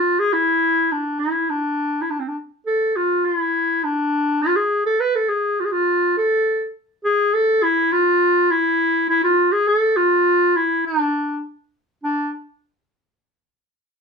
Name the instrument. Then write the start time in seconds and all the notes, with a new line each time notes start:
clarinet
Already playing: F4
0.19 G#4
0.33 E4
0.92 D4
1.20 E4
1.50 D4
2.01 E4
2.10 D4
2.20 C4
2.28 D4
2.67 A4
2.96 F4
3.25 F4
3.37 E4
3.84 D4
4.42 F4
4.56 G#4
4.86 A4
5.00 B4
5.16 A4
5.29 G#4
5.60 F4
5.65 G#4
5.72 F4
6.17 A4
7.04 G#4
7.34 A4
7.63 E4
7.92 F4
8.51 E4
9.09 E4
9.24 F4
9.53 G#4
9.68 A4
9.97 F4
10.56 E4
10.86 D4
12.04 D4